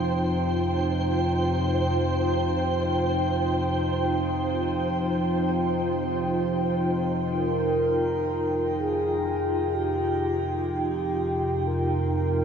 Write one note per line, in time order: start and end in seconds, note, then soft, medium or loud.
0.00 7.77 F2 medium
0.00 7.77 C3 medium
0.00 12.45 D#4 medium
0.00 12.45 F4 medium
0.00 7.79 C5 medium
0.00 12.45 G5 medium
7.33 8.74 A#4 loud
7.78 12.45 F2 medium
7.78 12.45 C3 medium
7.78 12.45 C6 medium
8.79 9.76 G#4 medium
9.74 11.68 G4 medium
11.67 12.45 A#4 loud